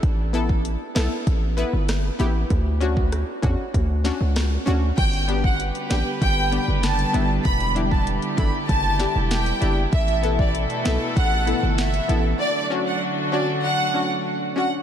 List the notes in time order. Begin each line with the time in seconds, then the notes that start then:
0.03 A1, kick, closed hi-hat
0.33 B3 E4 A4, closed hi-hat
0.49 kick
0.65 closed hi-hat
0.95 B1 B3 E4 A4, snare, closed hi-hat
1.27 A1, kick, closed hi-hat
1.57 B3 E4 B4, closed hi-hat
1.73 G1
1.89 cross-stick, snare, closed hi-hat
2.19 A1 B3 E4 G4, closed hi-hat
2.50 D2, kick, closed hi-hat
2.80 C#4 D4 F#4, closed hi-hat
2.97 kick
3.12 cross-stick, closed hi-hat
3.42 E2 C#4 D4 F#4, kick, closed hi-hat
3.74 D2, kick, closed hi-hat
4.04 C#4 D4 F#4, snare, closed hi-hat
4.21 C#2
4.36 cross-stick, snare, closed hi-hat
4.66 D2 C#4 D4 F#4, closed hi-hat
4.97 G1 D3 G3 B3 G4 B4 G5, kick, closed hi-hat, crash
5.13 closed hi-hat
5.28 B3 D4 G4, closed hi-hat
5.44 F#5, kick
5.60 closed hi-hat
5.75 closed hi-hat
5.90 A1 B3 D4 G4 G5, snare, closed hi-hat
6.21 G1 G5, kick, closed hi-hat
6.51 B3 D4 G4, closed hi-hat
6.68 F#1
6.83 A5, snare, closed hi-hat
6.99 closed hi-hat
7.13 G1 B3 D4 E4, closed hi-hat
7.45 E1 E4 G4 B5, kick, closed hi-hat
7.60 closed hi-hat
7.75 D4 E4 G4, closed hi-hat
7.91 A5, kick
8.07 closed hi-hat
8.22 closed hi-hat
8.37 G1 D4 E4 A4 B5, kick, closed hi-hat
8.69 F#1 A5, kick, closed hi-hat
8.99 D4 E4 G4, snare, closed hi-hat
9.15 E1
9.31 G5, snare, closed hi-hat
9.46 closed hi-hat
9.61 F#1 D4 E4 G4, closed hi-hat
9.93 A1 B2 E3 A3 A4 E5, kick, closed hi-hat
10.08 closed hi-hat
10.23 B3 E4 A4, closed hi-hat
10.39 D5, kick
10.55 closed hi-hat
10.70 closed hi-hat
10.85 B1 B3 E4 A4 E5, snare, closed hi-hat
11.16 A1 F#5, kick, closed hi-hat
11.46 B3 E4 A4, closed hi-hat
11.63 G1
11.78 E5, snare, closed hi-hat
11.94 closed hi-hat
12.08 A1 B3 E4 A4, closed hi-hat
12.40 D3 F#3 A3 D4 F#4 D5
12.70 C#4 D4 F#4
12.87 F#5
13.32 C#4 D4 F#4 D5
13.64 F#5
13.94 C#4 D4 F#4
14.56 C#4 D4 F#4 F#5